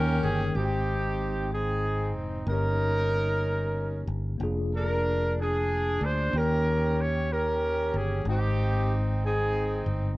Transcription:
Already playing: D#2 D#3 A#3 C#4 D#4 G4 A#4 G5
0.23 G1 G#4
0.53 G#1 G#2 G#3 C4 D#4 G4
0.59 F#4
0.65 G5
1.53 C4 D#4 G#4
2.15 F1
2.47 G1 G2 A#3 C#4 D#4 A#4
2.52 G4
4.07 G1
4.38 F1 A#3 D4 F4
4.43 G#4
4.75 D4 A#4
5.40 D4 G#4
6.01 D2 C5
6.31 D#2 D#3 A#3 C#4 D#4
6.35 C#4 G4 A#4 G5
7.01 C#5
7.31 C#4 G4 A#4
7.94 G1 G#4
8.24 G#1 G#2 G#3 C4 D#4
8.28 C4 D#4 G4 G5
9.25 C4 D#4 G#4
9.86 G1

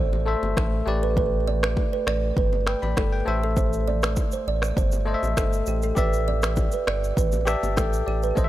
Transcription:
Already playing: A1 A3 A4 C5 E5
0.13 low bongo
0.25 A3 A4 C5 E5
0.42 G1, low bongo
0.57 A1 A4, finger snap, kick, cross-stick, high bongo
0.86 A1 A3 G4 B4 D5
1.03 B4
1.17 B4, kick, low conga
1.47 D5, low bongo, low conga
1.63 finger snap, cross-stick
1.77 kick, high bongo
1.93 B4
2.07 A1 D5, finger snap, cross-stick
2.37 G1 B4, kick, low conga
2.53 low bongo
2.67 B4 G5, finger snap, cross-stick
2.82 A1 D5 B5, low bongo
2.97 G1 A4, finger snap, kick, cross-stick, high bongo
3.12 B4 G5
3.25 A1 A3 G4 A4 C5 E5
3.43 A4
3.57 C5, kick, low conga, shaker
3.73 shaker
3.88 D5, low bongo, low conga
4.02 finger snap, cross-stick, shaker
4.16 kick, high bongo, shaker
4.32 C5, shaker
4.47 A1 D5
4.62 finger snap, cross-stick, shaker
4.77 G1 C5, kick, low conga, shaker
4.92 low bongo, shaker
5.05 A3 A4 C5 D#5
5.14 E5
5.22 A1, low bongo, shaker
5.37 G1 A4, finger snap, kick, cross-stick, high bongo, shaker
5.53 shaker
5.66 A1 G4, shaker
5.82 A4, shaker
5.95 A1 G4 B4 D5 E5, kick, low conga, shaker
6.13 shaker
6.28 D5, low bongo, low conga
6.42 finger snap, cross-stick, shaker
6.56 kick, high bongo, low bongo, shaker
6.72 B4, shaker
6.87 G1 D5, finger snap, cross-stick
7.04 shaker
7.17 A1 B4, kick, low conga, shaker
7.32 low bongo, shaker
7.45 G4 D5 E5 A5, finger snap, cross-stick, shaker
7.63 G1, low bongo, shaker
7.77 A1 A4 G5, finger snap, kick, cross-stick, high bongo, shaker
7.93 shaker
8.07 A1 G4 D5
8.23 B4, shaker
8.35 A1 A3 A4 C5 D#5, kick, low conga, shaker
8.44 E5

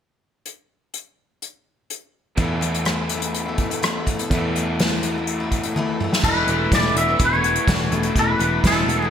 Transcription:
0.46 closed hi-hat
0.94 closed hi-hat
1.42 closed hi-hat
1.90 closed hi-hat
2.36 E2 B2 E3 A3 B3 E4, kick, closed hi-hat
2.61 E3 A3 B3 E4, closed hi-hat
2.74 closed hi-hat
2.85 E3 A3 B3 E4, cross-stick, closed hi-hat
3.09 E3 A3 B3, closed hi-hat
3.14 E4
3.22 A3 B3 E4, closed hi-hat
3.34 closed hi-hat
3.46 A3 B3 E4
3.58 kick, closed hi-hat
3.70 A3 B3 E4, closed hi-hat
3.82 E3 A3 B3 E4, cross-stick, closed hi-hat
4.06 E3 A3 B3 E4, kick, closed hi-hat
4.18 A3 B3 E4, closed hi-hat
4.30 E2 B2 E3 A3, kick, closed hi-hat
4.35 B3 E4
4.55 E3 A3 B3 E4, closed hi-hat
4.79 E3 A3 B3 E4, snare, closed hi-hat
5.03 E3 A3 B3 E4, closed hi-hat
5.16 A3 B3 E4
5.27 closed hi-hat
5.40 A3 B3 E4
5.52 kick, closed hi-hat
5.63 A3 B3 E4, closed hi-hat
5.76 E3 A3 B3 E4, high tom
6.00 E3 A3 B3 E4, mid tom
6.13 A3 B3 E4, snare
6.24 E1 E2 B2 E3 A3 B3 E4 B4, kick, crash
6.47 E1 E3 A3 B3 E4, closed hi-hat
6.71 E1 E2 B2 E3 A3 B3 E4 D5, kick, snare, closed hi-hat
6.95 E1 E3 A3 E5, closed hi-hat
6.99 B3 E4
7.08 E3 A3 B3 E4
7.19 E1 E3 A3 B3 E4, kick, closed hi-hat
7.25 C#5
7.33 E3 A3 B3 E4
7.41 B3, closed hi-hat
7.56 closed hi-hat
7.67 E1 E2 B2 E3 A3 B3 E4, kick, snare, closed hi-hat
7.91 E1 E3 A3 B3 E4, closed hi-hat
8.03 B3 E4, closed hi-hat
8.08 E3 A3
8.15 E1 E2 B2 E3 A3 B3 E4 B4, kick, closed hi-hat
8.39 E1 E3 A3 B3 E4, closed hi-hat
8.64 E1 E2 B2 E3 A3 B3 E4 A4, kick, snare, closed hi-hat
8.87 E1 E3 A3 B3 E4, closed hi-hat
8.99 B3 E4 G#4
9.04 E3 A3

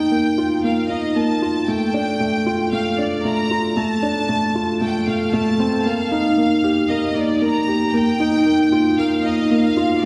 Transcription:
Already playing: A#3 D#4 G5
0.12 A#3
0.38 F4
0.64 A#3 F5
0.90 D#4 D#5
1.16 A#3 A5
1.42 F4
1.68 A3 G5
1.94 D4
2.20 A3
2.47 F4
2.72 A3 F5
2.99 D4 D5
3.25 A3 A#5
3.51 F4
3.77 A3 A5
4.03 D4
4.29 A3
4.55 F4
4.81 A3 G5
5.07 A3 F5
5.33 A3 A5
5.60 C4
5.85 A#3 F5
6.12 D#4
6.38 A#3
6.64 G4
6.90 A#3 D#5
7.16 D#4 D5
7.42 A#3 A#5
7.68 G4
7.94 A#3 G5
8.20 D#4
8.46 A#3
8.72 F4
8.99 A#3 F5
9.25 D#4 D#5
9.51 A#3 F5
9.77 F4

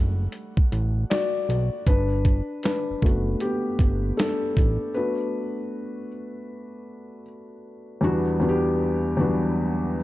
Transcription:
Already playing: F#1 G3 A3 D4 F#4 A4 F#5
0.32 closed hi-hat
0.57 kick
0.72 A1, closed hi-hat
1.10 F#4 D5, snare, closed hi-hat
1.49 B1, closed hi-hat
1.87 G1 D4 B4, kick, closed hi-hat
2.25 kick, closed hi-hat
2.63 D4 B4, snare, closed hi-hat
2.90 F#1
3.02 F#1 A3 B3 F#4, kick, closed hi-hat
3.40 B3 G4, closed hi-hat
3.79 G1, kick, closed hi-hat
4.17 D4 A4, snare, closed hi-hat
4.57 A1, kick, closed hi-hat
4.94 A3 B3 D4 F#4 B4
8.01 E2 G3 B3 D4 F#4
8.40 E2 G3 B3 D4 F#4
8.49 G4
9.17 E2 F#3 B3 D4 F#4
9.24 G3

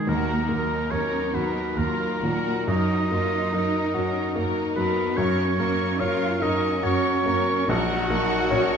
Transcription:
Already playing: D#3 D#4 B4
0.06 D#2 D#3 F#3 A#3 F#4 A#4 A#5
0.49 D#2 F#3 A#3 D#4 A#4 A#5
0.91 D#2 F#3 C#4 A#4 C#5 A#5
1.33 D#2 F#3 B3 F#4 A#4 B4 A#5
1.76 D#2 F#3 A#3 F4 A#4 A#5
2.22 D#2 A#2 F#3 F#4 A#4 A#5
2.67 F#2 F#3 D#4 A#4 D#5 A#5
3.11 F#2 F#3 A#3 F4 A#4 A#5
3.54 F#2 F#3 D#4 A#4 A#5
3.94 F#2 F#3 C#4 F#4 A#4 A#5
4.36 F#2 F#3 A#3 D#4 A#4 A#5
4.76 F#2 F#3 B3 A#4 B4 A#5
5.16 F#2 F#3 C#4 A#4 C#5 C#6
5.57 F#2 F#3 A#3 A#4 C#6
5.99 F#2 F#3 C#4 F4 A#4 C#5 F5 C#6
6.40 F#2 F#3 D#4 A#4 D#5 C#6
6.82 F#2 F#3 C#4 F#4 A#4 C#5 C#6
7.24 F#2 F#3 A#3 A#4 C#6
7.69 A#1 F#3 D#4 F#4 A#4 F#5 C#6
8.10 A#1 F#3 A#3 A#4 C#6
8.50 A#1 F#3 C#4 A#4 C#5 C#6

